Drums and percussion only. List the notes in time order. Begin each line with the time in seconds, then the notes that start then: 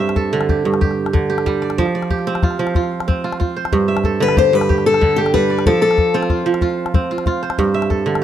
0.09 calabash click
0.16 calabash thump, calabash click
0.41 calabash click
0.49 calabash thump
0.74 calabash click
0.82 calabash thump
0.91 calabash click
1.06 calabash click
1.14 calabash thump
1.38 calabash click
1.46 calabash thump
1.62 calabash click
1.70 calabash click
1.78 calabash thump, calabash click
1.86 calabash click
2.02 calabash click
2.10 calabash thump
2.19 calabash click
2.35 calabash click
2.43 calabash thump, calabash click
2.50 calabash click
2.58 calabash click
2.67 calabash click
2.75 calabash thump
2.83 calabash click
2.91 calabash click
3.00 calabash click
3.09 calabash thump
3.24 calabash click
3.33 calabash click
3.41 calabash thump
3.65 calabash click
3.72 calabash thump
3.97 calabash click
4.04 calabash thump, calabash click
4.29 calabash click
4.37 calabash thump
4.61 calabash click
4.70 calabash thump
4.78 calabash click
4.94 calabash click
5.02 calabash thump
5.26 calabash click
5.34 calabash thump
5.50 calabash click
5.59 calabash click
5.66 calabash thump
5.91 calabash click
5.98 calabash thump, calabash click
6.23 calabash click
6.30 calabash thump
6.54 calabash click
6.61 calabash thump
6.70 calabash click
6.86 calabash click
6.94 calabash thump
7.18 calabash click
7.26 calabash thump
7.43 calabash click
7.50 calabash click
7.58 calabash thump
7.82 calabash click
7.90 calabash thump, calabash click
8.15 calabash click